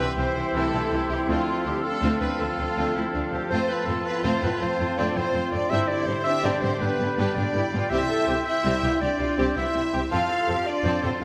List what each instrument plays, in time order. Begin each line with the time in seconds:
Already playing: trombone section E3 C4, trumpet G4, oboe E5, flute section C6
0.00 french horn section B3, violin section D4 F4 B4
0.16 double bass section C2, viola section E3 C4, french horn section C4, cello section E4, violin section E4 G4 C5, clarinet C5
0.36 double bass section C2, viola section E3 C4, violin section C4 E4
0.53 double bass section C2, viola section E3 C4, french horn section A3, violin section E4 G4 A4, clarinet A4
0.72 double bass section C2, viola section E3 C4, violin section D4 F4
0.90 double bass section C2, viola section E3 C4, violin section E4 G4
1.09 double bass section C2, viola section E3 C4, french horn section G3, violin section C4 E4 G4, clarinet G4
1.28 double bass section D2, trombone section F3, french horn section F3, viola section A3 C4, violin section D4 F4, clarinet F4, trumpet A4, oboe F5
1.64 double bass section D2, french horn section G3, viola section A3 C4, violin section D4 F4 G4, clarinet G4
1.82 french horn section A3, cello section D4, clarinet A4, violin section A4
2.02 double bass section D2, viola section A3 C4, violin section D4 F4
2.20 double bass section D2, viola section A3 C4, french horn section B3, violin section C4 E4 B4, clarinet B4
2.40 double bass section D2, viola section A3 C4, french horn section A3, violin section D4 F4 A4, cello section F4, clarinet A4
2.57 double bass section D2, viola section A3 C4, violin section C4 D4
2.76 double bass section D2, viola section A3 C4, violin section D4 F4
2.95 double bass section D2, viola section A3 C4, violin section C4 E4, cello section E4
3.13 double bass section D2, viola section A3 C4, cello section D4, violin section D4 F4
3.32 double bass section D2, viola section A3 C4, violin section C4 D4, cello section G4
3.49 double bass section F2, viola section A3 C4, french horn section C4, trombone section C4, violin section C4 F4 C5, cello section F4, clarinet C5, oboe A5, flute section C6
3.68 french horn section B3, clarinet B4, violin section B4
3.86 double bass section F2, french horn section A3, viola section A3 C4, violin section C4 F4 A4, clarinet A4
4.05 french horn section B3, clarinet B4, violin section B4
4.23 double bass section F2, viola section A3 C4, french horn section C4, violin section C4 F4 C5, clarinet C5
4.42 double bass section F2, viola section A3 C4, violin section B3 E4 B4, french horn section B3, clarinet B4
4.60 double bass section F2, viola section A3 C4, french horn section C4, violin section C4 F4 C5, clarinet C5
4.78 double bass section F2, viola section A3 C4, violin section A3 C4
4.97 double bass section F2, viola section A3 C4, violin section C4 F4 D5, french horn section D4, clarinet D5
5.15 double bass section F2, viola section A3 C4, violin section B3 E4 C5, french horn section C4, clarinet C5
5.33 double bass section F2, viola section A3 C4, violin section C4 F4
5.51 double bass section F2, viola section A3 C4, violin section A3 C4 D5, french horn section D4, clarinet D5
5.68 double bass section G2, trombone section D3, viola section G3 C4, violin section C4 D4 E5, french horn section E4, cello section E4, trumpet G4, clarinet E5, oboe G5
5.88 french horn section D4, clarinet D5, violin section D5
6.06 double bass section G2, viola section G3 C4, french horn section C4, violin section C4 D4 C5, clarinet C5
6.24 cello section D4, french horn section E4, clarinet E5, violin section E5
6.43 double bass section G2, viola section G3 C4, violin section C4 D4 D5, french horn section D4, clarinet D5
6.61 double bass section G2, viola section G3 C4, violin section B3 C4 C5, french horn section C4, clarinet C5
6.80 double bass section G2, viola section G3 B3, trombone section B3, french horn section B3, violin section D4 G4 B4, clarinet B4, flute section B5
6.98 double bass section G2, viola section G3 B3, violin section B3 D4
7.17 double bass section G2, viola section G3 B3, french horn section B3, violin section D4 G4 B4, clarinet B4
7.34 double bass section G2, viola section G3 B3, violin section C4 F4 D5, french horn section D4, cello section D4, clarinet D5
7.53 double bass section G2, viola section G3 B3, cello section E4, violin section G4
7.57 violin section D4
7.72 double bass section G2, viola section G3 B3, violin section B3 D4, cello section F4
7.90 double bass section C2, timpani C3, viola section G3 C4, violin section C4 G4 E5, french horn section E4, cello section G4, clarinet E5, flute section C6
8.09 cello section A4
8.26 double bass section C2, trombone section C3 C4, viola section G3 C4, violin section C4 G4, cello section G4, trumpet G4
8.45 french horn section E4, cello section E4, clarinet E5, violin section E5
8.64 double bass section C2, viola section G3 C4, violin section C4 G4
8.82 double bass section C2, trombone section C3 C4, viola section G3 C4, violin section B3 F4, trumpet G4
9.00 double bass section C2, viola section G3 C4, violin section C4 G4 D5, french horn section D4, cello section G4, clarinet D5
9.19 double bass section C2, viola section G3 C4, violin section G3 E4, cello section F4
9.37 double bass section C2, trombone section C3 C4, viola section G3 C4, violin section C4 G4, trumpet G4, cello section G4
9.56 double bass section C2, viola section G3 C4, violin section B3 F4 E5, french horn section E4, cello section E4, clarinet E5
9.73 double bass section C2, viola section G3 C4, violin section C4 G4, cello section E4
9.91 double bass section C2, trombone section C3 C4, violin section G3 E4, viola section G3 C4, trumpet G4, cello section G4
10.10 double bass section F2, viola section F3 C4, violin section C4 A4 F5, cello section F4, french horn section F4, clarinet F5, oboe A5
10.30 cello section A4
10.48 double bass section F2, trombone section C3 C4, viola section F3 C4, violin section C4 A4, cello section G4, trumpet A4
10.66 french horn section D4, cello section F4, clarinet D5, violin section D5
10.84 double bass section F2, viola section F3 C4, violin section C4 A4
11.02 double bass section F2, trombone section C3 C4, viola section F3 C4, violin section B3 G4 C5, french horn section C4, trumpet A4, clarinet C5
11.20 double bass section F2, viola section F3 C4, violin section C4